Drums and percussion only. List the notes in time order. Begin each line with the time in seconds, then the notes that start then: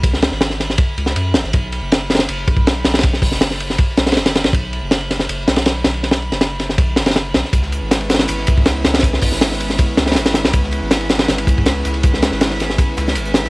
0.04 kick, ride
0.14 snare
0.22 snare, ride
0.32 snare
0.41 snare, ride
0.50 snare
0.60 snare, ride
0.70 snare
0.78 kick, ride
0.98 ride
1.06 snare
1.16 ride
1.34 snare, ride
1.44 snare
1.53 kick, ride
1.72 ride
1.92 snare, ride
2.01 ride
2.10 snare, ride
2.15 snare, ride
2.19 snare, ride
2.28 ride
2.48 kick, ride
2.57 kick
2.67 snare, ride
2.84 snare, ride
2.94 snare, ride
2.99 snare, ride
3.03 kick, ride
3.13 snare
3.22 kick, open hi-hat
3.32 snare
3.41 snare, ride
3.51 snare
3.60 ride
3.70 snare
3.78 kick, ride
3.97 snare, ride
4.06 snare, ride
4.12 snare, ride
4.17 snare, ride
4.26 snare, ride
4.35 snare, ride
4.44 snare, ride
4.53 kick, ride
4.73 ride
4.91 snare, ride
5.01 ride
5.11 snare, ride
5.19 snare
5.29 ride
5.48 snare, ride
5.56 snare, ride
5.66 snare, ride
5.84 snare, ride
5.94 ride
6.03 snare, ride
6.11 snare, ride
6.22 ride
6.32 snare, ride
6.41 snare, ride
6.50 ride
6.60 snare, ride
6.69 snare
6.78 kick, ride
6.96 snare, ride
7.06 snare, ride
7.11 snare, ride
7.16 snare, ride
7.34 snare, ride
7.44 snare
7.53 kick, closed hi-hat, ride
7.62 snare
7.72 closed hi-hat, ride
7.91 snare, closed hi-hat, ride
8.01 ride
8.10 snare, closed hi-hat, ride
8.14 snare, ride
8.19 snare, ride
8.28 closed hi-hat, ride
8.47 kick, closed hi-hat, ride
8.58 kick
8.66 snare, closed hi-hat, ride
8.85 snare, closed hi-hat, ride
8.94 snare, ride
8.99 kick, snare, ride
9.04 closed hi-hat, ride
9.13 snare
9.22 kick, closed hi-hat, open hi-hat
9.32 snare
9.41 snare, closed hi-hat, ride
9.50 snare
9.60 closed hi-hat, ride
9.70 snare
9.78 kick, closed hi-hat, ride
9.97 snare, closed hi-hat, ride
10.06 snare, closed hi-hat, ride
10.12 snare, ride
10.15 snare, closed hi-hat, ride
10.25 snare, closed hi-hat, ride
10.34 snare, closed hi-hat, ride
10.44 snare, ride
10.53 kick, closed hi-hat, ride
10.63 snare
10.71 closed hi-hat, ride
10.91 snare, closed hi-hat, ride
11.01 ride
11.09 snare, closed hi-hat, ride
11.19 snare, ride
11.28 snare, closed hi-hat, ride
11.38 ride
11.47 kick, closed hi-hat, ride
11.58 kick
11.66 snare, closed hi-hat, ride
11.85 snare, closed hi-hat, ride
11.94 ride
12.03 kick, closed hi-hat, ride
12.13 snare
12.22 snare, closed hi-hat, ride
12.31 snare
12.41 snare, closed hi-hat, ride
12.50 snare
12.60 snare, closed hi-hat, ride
12.70 snare
12.78 kick, closed hi-hat, ride
12.97 snare, closed hi-hat, ride
13.08 snare, closed hi-hat
13.15 closed hi-hat, ride
13.25 closed hi-hat
13.34 snare, closed hi-hat, ride
13.44 snare